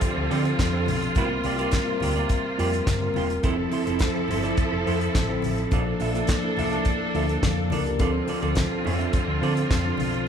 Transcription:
Already playing: D3 F3 C4 D4 F4 G4 A4
0.01 kick, closed hi-hat, muted conga
0.16 D2, muted clean electric guitar stroke
0.29 D3 F3 C4 D4 F4 A4 D5, open hi-hat
0.44 muted clean electric guitar stroke, closed hi-hat
0.58 F2, muted clean electric guitar stroke, kick, snare, clap, closed hi-hat, high conga
0.73 F3 C4 D4 A4, muted clean electric guitar stroke
0.86 B1, open hi-hat, high conga
1.01 muted clean electric guitar stroke, closed hi-hat
1.15 C2 C3 G3 A#3 C4 F4 G4 A#4 C5, kick, closed hi-hat, muted conga
1.30 muted clean electric guitar stroke
1.44 C2 A#3 F4 G4 D5, open hi-hat, muted conga
1.58 G3 A#3 C4 F4 G4 A#4 D5, closed hi-hat
1.71 muted clean electric guitar stroke, kick, snare, clap, closed hi-hat, high conga
1.87 G3 C4 F4 A#4, muted clean electric guitar stroke
2.00 D2 A#3 F4 G4 D5, open hi-hat, low conga
2.16 A#3 F4 G4 D5, closed hi-hat
2.29 kick, closed hi-hat
2.44 muted clean electric guitar stroke
2.58 F2 G3 A#3 C4 F4 G4 A#4 D5, open hi-hat
2.72 muted clean electric guitar stroke, closed hi-hat
2.86 G2, kick, snare, clap, closed hi-hat, high conga
3.00 G3 C4 F4 A#4, muted clean electric guitar stroke, high conga
3.14 E1 A#3 F4 G4 C5, open hi-hat, high conga
3.29 muted clean electric guitar stroke, closed hi-hat
3.43 F1 F3 C4 E4 A4 C5, kick, closed hi-hat, muted conga
3.58 muted clean electric guitar stroke
3.71 C4 E4 A4 C5, open hi-hat, muted conga
3.86 F1 F3 C4 E4 A4 C5, closed hi-hat
3.99 kick, snare, clap, closed hi-hat, high conga
4.15 F3 C4 E4 A4, muted clean electric guitar stroke
4.28 G1 C4 E4 A4 C5, open hi-hat, low conga
4.43 C4 E4 A4 D5, closed hi-hat
4.57 kick, closed hi-hat, muted conga
4.71 F1, muted clean electric guitar stroke
4.86 F2 F3 C4 E4 A4 C5, open hi-hat
5.01 muted clean electric guitar stroke, closed hi-hat
5.14 A1, muted clean electric guitar stroke, kick, snare, clap, closed hi-hat, high conga
5.29 F3 C4 E4 A4, muted clean electric guitar stroke
5.42 A1, open hi-hat, high conga
5.58 muted clean electric guitar stroke, closed hi-hat
5.71 A#1 F3 A#3 D4 F4 A4 D5, kick, closed hi-hat, muted conga
5.86 muted clean electric guitar stroke
6.00 A#1 D4 F4 A4 E5, open hi-hat, muted conga
6.14 F3 A#3 D4 F4 A4 E5, closed hi-hat
6.27 muted clean electric guitar stroke, kick, snare, clap, closed hi-hat, high conga
6.43 F3 A#3 D4 E4, muted clean electric guitar stroke
6.57 C2 D4 F4 A4 E5, open hi-hat, low conga
6.72 D4 F4 A4 E5, closed hi-hat
6.85 kick, closed hi-hat, muted conga
7.00 muted clean electric guitar stroke
7.14 D2 F3 A#3 D4 F4 A4 E5, open hi-hat
7.29 muted clean electric guitar stroke, closed hi-hat
7.43 F2 D5 F5, kick, snare, clap, closed hi-hat, high conga
7.57 muted clean electric guitar stroke
7.70 C#2 D4 F4 A4 A#4 D5, open hi-hat, high conga
7.86 G4 A#4, muted clean electric guitar stroke, closed hi-hat
7.99 D2 D3 F3 C4 D4 F4 A4 D5, kick, closed hi-hat, muted conga
8.13 muted clean electric guitar stroke
8.27 C4 F4 A4 D5, open hi-hat, muted conga
8.42 D2 F3 C4 D4 F4 A4 D5, closed hi-hat
8.55 muted clean electric guitar stroke, kick, snare, clap, closed hi-hat, high conga
8.70 F3 C4 D4 A4, muted clean electric guitar stroke
8.84 F2 C4 F4 A4 D5, open hi-hat, low conga
8.99 C4 F4 A4 E5, closed hi-hat
9.13 kick, closed hi-hat, muted conga
9.27 D2, muted clean electric guitar stroke
9.42 D3 F3 C4 D4 F4 A4 D5, open hi-hat
9.56 muted clean electric guitar stroke, closed hi-hat
9.70 F2, muted clean electric guitar stroke, kick, snare, clap, closed hi-hat, high conga
9.85 F3 C4 D4 F4, muted clean electric guitar stroke
9.97 B1, open hi-hat, high conga
10.13 muted clean electric guitar stroke, closed hi-hat

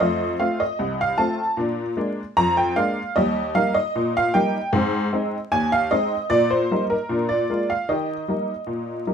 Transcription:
0.00 F2 A3 D#5
0.39 A3 C4 F4 F5
0.60 D#5
0.79 C2
1.01 F5
1.18 A3 C4 F4 A5
1.57 A#2 D4
1.97 G#3 A#3 D4
2.37 F2 A#5
2.57 G5
2.76 G#3 A#3 D4 F5
3.16 D#2 G3 D#5
3.55 G3 A#3 D#4 F5
3.74 D#5
3.96 A#2
4.17 F5
4.34 G3 A#3 D#4 G5
4.73 G#2 C4
5.13 G#3 C4 D#4
5.52 D#2 G#5
5.72 F5
5.91 G#3 C4 D#4 D#5
6.30 A#2 D5
6.50 C5
6.71 G3 A#3 D#4
6.90 A#4
7.09 A#2 D4
7.29 D5
7.50 G#3 A#3 F4
7.70 F5
7.89 D#3 G4 D#5
8.28 G3 A#3 D#4
8.67 A#2
9.07 G3 A#3 D#4

